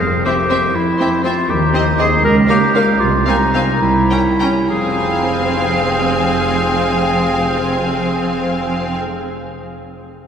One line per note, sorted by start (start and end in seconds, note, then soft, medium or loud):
0.00 0.47 F1 soft
0.00 0.63 F2 medium
0.00 1.51 F3 soft
0.00 0.24 G#4 medium
0.00 0.49 C5 soft
0.00 0.74 C6 soft
0.25 0.33 C4 soft
0.25 1.51 E4 soft
0.25 0.77 G4 medium
0.25 0.33 C5 soft
0.25 0.34 E5 soft
0.49 0.58 C4 soft
0.49 0.57 C5 soft
0.49 1.24 C5 soft
0.49 0.59 E5 soft
0.75 1.37 F2 soft
0.75 1.23 E4 medium
0.75 2.26 C6 soft
0.99 1.07 C4 soft
0.99 1.07 C5 soft
0.99 1.08 E5 soft
0.99 1.51 E5 soft
1.24 1.32 C4 soft
1.24 1.51 F4 medium
1.24 1.32 C5 soft
1.24 1.98 C5 soft
1.24 1.33 E5 soft
1.49 1.95 D#2 medium
1.49 2.11 D#2 medium
1.49 2.26 D#3 medium
1.49 1.99 G4 medium
1.73 1.81 C4 soft
1.73 1.97 D#4 soft
1.73 1.81 C5 soft
1.73 1.82 D#5 soft
1.98 2.06 C4 soft
1.98 2.26 D#4 soft
1.98 2.24 G#4 medium
1.98 2.06 C5 soft
1.98 2.26 C5 soft
1.98 2.07 D#5 soft
2.24 2.71 C#2 medium
2.24 2.87 C#2 soft
2.24 3.03 C#3 medium
2.24 2.36 A#4 medium
2.48 2.56 A#3 soft
2.48 3.03 C#4 soft
2.48 3.02 G4 medium
2.48 2.56 C#5 soft
2.48 2.57 F5 soft
2.74 2.82 A#3 soft
2.74 3.53 F4 soft
2.74 3.03 A#4 soft
2.74 2.83 C#5 soft
2.74 2.83 F5 soft
3.00 3.50 C2 soft
3.00 3.68 C2 medium
3.00 3.81 C3 medium
3.00 3.26 F4 medium
3.26 3.84 G#3 soft
3.26 3.34 C4 soft
3.26 3.81 D#4 medium
3.26 3.34 F5 soft
3.26 3.36 G#5 soft
3.54 3.62 C4 soft
3.54 3.84 F4 soft
3.54 4.90 C5 soft
3.54 3.62 F5 soft
3.54 3.63 G#5 soft
3.81 4.55 C2 medium
3.81 4.36 C2 medium
3.81 4.72 C3 soft
3.81 4.68 E4 medium
4.10 4.73 A#3 soft
4.10 4.19 C#4 soft
4.10 4.18 G5 soft
4.10 4.19 A#5 soft
4.39 4.49 C#4 soft
4.39 4.72 G4 soft
4.39 4.73 C#5 soft
4.39 4.47 G5 soft
4.39 4.49 A#5 soft
4.70 8.97 F1 soft
4.70 8.97 F2 soft
4.70 9.29 F3 soft
4.70 8.97 C4 soft
4.70 8.97 G#4 soft
4.70 8.96 F5 soft
4.70 8.97 G#5 soft
4.77 9.36 C4 soft
4.84 9.43 F4 soft
4.92 9.50 C5 soft
4.98 9.57 F5 soft